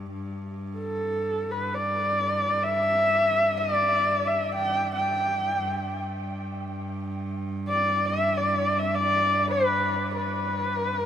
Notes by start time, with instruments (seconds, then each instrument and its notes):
Already playing: cello G2
0.13 cello G2
0.79 horsehead fiddle A4
1.51 horsehead fiddle B4
1.75 horsehead fiddle D5
2.63 horsehead fiddle E5
3.57 horsehead fiddle D5
4.27 horsehead fiddle E5
4.55 horsehead fiddle G5
4.95 horsehead fiddle G5
5.58 cello G2
7.68 horsehead fiddle D5
8.05 horsehead fiddle E5
8.37 horsehead fiddle D5
8.79 horsehead fiddle E5
8.95 horsehead fiddle D5
9.51 horsehead fiddle B4
10.16 horsehead fiddle B4